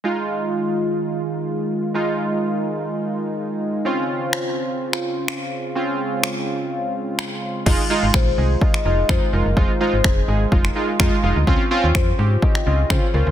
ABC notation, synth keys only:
X:1
M:4/4
L:1/8
Q:1/4=126
K:Fm
V:1 name="Synth keys"
[A,EF]8 | [A,EF]8 | [CDF]8 | [CDF]8 |
[A,EF] [A,EF] [A,F] [A,EA] [A,EF] [A,EF] [A,EF] [A,EF] | [A,EF] [A,EF] [A,EA] [A,EA] [A,EF] [A,EF] [A,EF] [A,EF] | [CDF] [CDF] z [CDG] [CDG] [CDF] [CDF] [CDF] |]